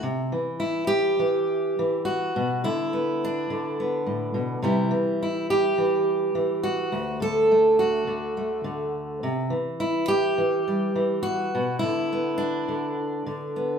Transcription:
steel-string acoustic guitar
0.03 C3
0.32 E3
0.60 E4
0.87 G4
1.19 E3
1.79 E3
2.05 F#4
2.36 B2
2.64 D3 E4
2.93 B3
3.24 D4
3.50 D3
3.80 B3
4.06 A2
4.34 B2
4.62 C3 E3 G3 E4
4.91 E3
5.23 E4
5.50 G4
5.78 E3
6.35 E3
6.63 F#4
6.92 D2
7.20 D3 A4
7.51 A3
7.79 F#4
8.07 D3
8.37 A3
8.64 D3
9.23 C3
9.50 E3
9.80 E4
10.08 G4
10.38 E3
10.68 G3
10.95 E3
11.23 F#4
11.55 B2
11.79 D3 E4
12.12 B3
12.38 D4
12.68 D3
13.26 D3
13.56 B3

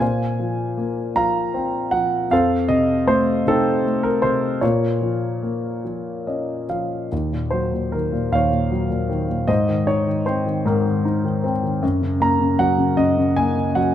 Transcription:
grand piano
0.00 A#2 C5 F5 G#5
0.40 F3
0.78 A#3
1.15 F3 F5 A#5
1.54 C4
1.91 F3 F#5
2.31 F2 A4 C5 F5
2.69 C3 D#5
3.07 A3 C5
3.46 C3 C4 D#4 A4
3.84 A3
4.03 A#4
4.22 C3 C5
4.61 A#2 F4 A#4 C#5
5.01 F3
5.43 A#3
5.85 F3
6.27 C#4 D#5
6.69 F3 F5
7.12 D#2
7.32 A#2
7.51 F#3 C5
7.73 A#2
7.92 D#3 A#4
8.12 A#2
8.32 D#2 C#5 F5
8.51 A#2
8.71 F#3
8.90 A#2
9.10 D#3
9.28 A#2
9.48 G#2 C5 D#5
9.69 D#3
9.87 D#4 C#5
10.07 D#3
10.26 C4 C5
10.46 D#3
10.65 G#2 A#4
10.85 D#3
11.05 D#4
11.25 D#3
11.44 C4
11.63 D#3
11.82 F#2
12.02 C#3
12.20 A#3 A#5
12.40 C#3
12.59 F#3 F#5
12.78 C#3
12.97 F#2 D#5
13.17 C#3
13.37 A#3 G#5
13.56 C#3
13.75 F#3 F#5

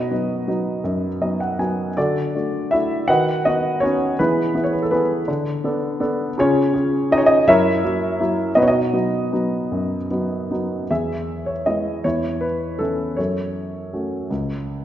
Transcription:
grand piano
Already playing: B2 D#4 F#4 B4 D#5
0.11 F#3 B3 D#4
0.47 F#3 B3 D#4
0.84 F#2
1.21 F#3 B3 D#4 D#5
1.40 F#5
1.59 F#3 B3 D#4 G#5
1.97 D3 D4 F#4 A4 D5
2.35 A3 D4 F#4
2.71 A3 D4 E4 F#4 E5
3.08 D#3 F#4 B4 D#5 F#5
3.45 B3 D#4 F#4 D#5
3.80 B3 C#4 D#4 F#4 C#5
4.19 E3 B3 E4 G#4 B4
4.55 B3 E4 G#4
4.64 C#5
4.73 B4
4.82 A4
4.91 B3 E4 G#4 B4
5.28 D3
5.64 B3 D4 A4
6.00 B3 D4 A4
6.38 C#3 C#4 F4 G#4 C#5
6.74 C#4 F4 G#4
7.11 C#4 D#4 F4 G#4 D#5
7.17 C#5
7.26 D#4 D#5
7.47 F#2 E4 A#4 C#5 E5
7.84 F#3 A#3 E4
8.20 F#3 A#3 E4
8.55 B2 D#4 F#4 B4 D#5
8.62 C#5
8.68 D#4 F#4 D#5
8.93 F#3 B3 D#4
9.32 F#3 B3 D#4
9.72 F#2
10.11 F#3 B3 D#4
10.51 F#3 B3 D#4
10.90 E2 G#4 E5
11.46 C#5
11.66 G#3 B3 E4 D#5
12.04 E2 E4 C#5
12.41 B4
12.79 E3 C#4 E4 A4
13.17 F#2 A4 C#5
13.93 A3 C#4 F#4
14.30 C#2

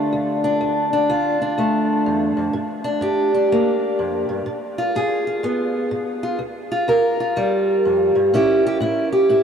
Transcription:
steel-string acoustic guitar
Already playing: D3 A3 D4 F4
0.13 D2
0.44 D4
0.61 D2
0.93 D4
1.09 D2 F4
1.42 D4
1.58 D2 A3
2.06 E2
2.37 F2
2.53 G2
2.84 D4
3.01 G2 G4
3.34 D4
3.52 G2 A#3
3.99 F2
4.29 G2
4.46 G#2
4.78 F4
4.95 G#2 G#4
5.27 F4
5.43 G#2 B3
5.91 G#2
6.23 F4
6.39 D2
6.72 F4
6.88 D2 A#4
7.20 F4
7.36 D2 G3
7.85 F2
8.15 G2
8.34 A2 C#4 E4 G4
8.66 G4
8.80 A2 E4
9.12 G4
9.29 A2 E4

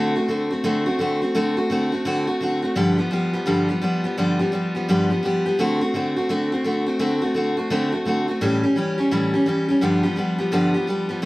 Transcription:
steel-string acoustic guitar
Already playing: D3 A3 C4 F#4
0.16 A3 C4 F#4
0.28 D3 A3 C4 F#4
0.50 A3 C4 F#4
0.64 D3 A3 C4 F#4
0.86 A3 C4 F#4
0.99 D3 A3 C4 F#4
1.22 A3 C4 F#4
1.35 D3 A3 C4 F#4
1.57 A3 C4 F#4
1.70 D3 A3 C4 F#4
1.92 A3 C4 F#4
2.05 D3 A3 C4 F#4
2.27 A3 C4 F#4
2.41 D3 A3 C4 F#4
2.62 A3 C4 F#4
2.75 G2 D3 F3 G3 B3 G4
2.98 F3 G3 B3 G4
3.11 F3 G3 B3 G4
3.33 F3 G3 B3 G4
3.46 G2 D3 F3 G3 B3 G4
3.69 F3 G3 B3 G4
3.82 F3 G3 B3 G4
4.04 F3 G3 B3 G4
4.17 G2 D3 F3 G3 B3 G4
4.39 F3 G3 B3 G4
4.52 F3 G3 B3 G4
4.75 F3 G3 B3 G4
4.89 G2 D3 F3 G3 B3 G4
5.10 F3 G3 B3 G4
5.23 F3 G3 B3 G4
5.46 F3 G3 B3 G4
5.59 D3 A3 C4 F#4
5.81 A3 C4 F#4
5.94 D3 A3 C4 F#4
6.16 A3 C4 F#4
6.29 D3 A3 C4 F#4
6.52 A3 C4 F#4
6.64 D3 A3 C4 F#4
6.86 A3 C4 F#4
6.99 D3 A3 C4 F#4
7.22 A3 C4 F#4
7.34 D3 A3 C4 F#4
7.57 A3 C4 F#4
7.70 D3 A3 C4 F#4
7.92 A3 C4 F#4
8.05 D3 A3 C4 F#4
8.28 A3 C4 F#4
8.41 A2 E3 G3 C#4 G4
8.63 G3 C#4 G4
8.76 E3 G3 C#4 G4
8.98 G3 C#4 G4
9.11 A2 E3 G3 C#4 G4
9.34 G3 C#4 G4
9.46 E3 G3 C#4 G4
9.68 G3 C#4 G4
9.81 G2 D3 F3 G3 B3 G4
10.03 F3 G3 B3 G4
10.16 F3 G3 B3 G4
10.38 F3 G3 B3 G4
10.52 G2 D3 F3 G3 B3 G4
10.74 F3 G3 B3 G4
10.87 F3 G3 B3 G4
11.09 F3 G3 B3 G4
11.22 D3

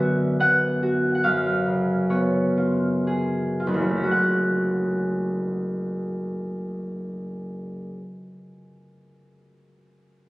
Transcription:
harp
Already playing: F#2 D3 B3 D5 E5
0.00 F#4
0.40 B3 F#5
0.83 F#4
1.15 F#5
1.24 F#2 F5
1.66 C#3
2.10 B3 C#5
2.57 F4
3.07 G#4
3.60 F4
3.67 F#1
3.74 C#2
3.82 F#3
3.89 A3
3.96 C#4
4.03 F#4
4.11 F#5

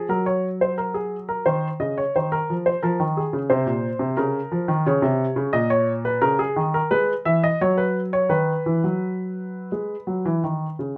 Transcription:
grand piano
0.09 F#3 A#4
0.26 C#5
0.61 C5
0.78 A#4
0.94 G#4
1.29 A#4
1.46 D#3 C5
1.80 C#3 D#5
1.98 C#5
2.16 D#3 C5
2.32 A#4
2.50 F3
2.66 C5
2.83 F3 A#4
3.00 D#3
3.17 G#4
3.33 C#3
3.50 C3 C5
3.66 A#2
3.99 C3
4.17 C#3 A#4
4.52 F3
4.68 D#3
4.87 C#3 C#5
5.02 C3
5.36 C#3
5.53 A#2 D#5
5.70 C#5
6.05 B4
6.22 C#3 A#4
6.39 G#4
6.56 D#3
6.74 A#4
6.91 G#3 B4
7.25 E3 E5
7.44 D#5
7.61 F#3 C#5
7.77 B4
8.13 C#5
8.29 D#3 B4
8.66 E3
8.84 F#3
9.72 G#3
10.07 F#3
10.25 E3
10.44 D#3
10.79 C#3

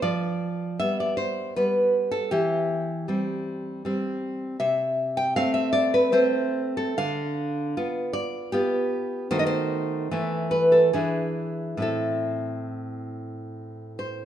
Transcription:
nylon-string guitar
0.02 F3 D5
0.80 G3 B3 E5
1.00 D5
1.17 C5
1.56 G3 B3 B4
2.12 A4
2.31 E3 G4
3.08 G3 C4
3.85 G3 C4
4.60 C3 E5
5.17 G5
5.36 A3 C4 F5
5.54 E5
5.73 D5
5.94 B4
6.12 A3 C4 C5
6.77 A4
6.98 D3 F5
7.77 B3 F4
8.13 D5
8.52 B3 F4 G4
9.31 D#3 A3 F#4 C5
9.39 D#5
9.47 C5
10.11 E3 A3 E4
10.51 B4
10.72 A4
10.93 E3 D4 E4 G#4
11.77 A2 C4 E4
11.82 A4
13.99 C5

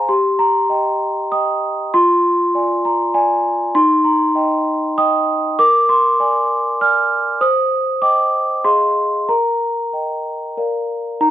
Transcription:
celesta
Already playing: G#4 C5 F5 G#5 A#5 C6
0.09 G4 C6
0.39 A#5
0.69 D#5 G5
1.32 D#5 G5 D#6
1.94 F4 C6
2.55 D5 G#5
2.85 A#5
3.14 D5 G#5
3.75 D#4 C6
4.05 A#5
4.35 D#5 G5
4.98 D#5 G5 D#6
5.59 A#4 D6
5.89 C6
6.20 D5 G#5
6.81 D5 G#5 F6
7.41 C5 D#6
8.02 D#5 G5 D6
8.64 G#4 D#5 F5 C6
9.29 A#4 A#5
9.93 D#5 G5
10.58 A#4 D5 F5
11.21 D#4 A#5

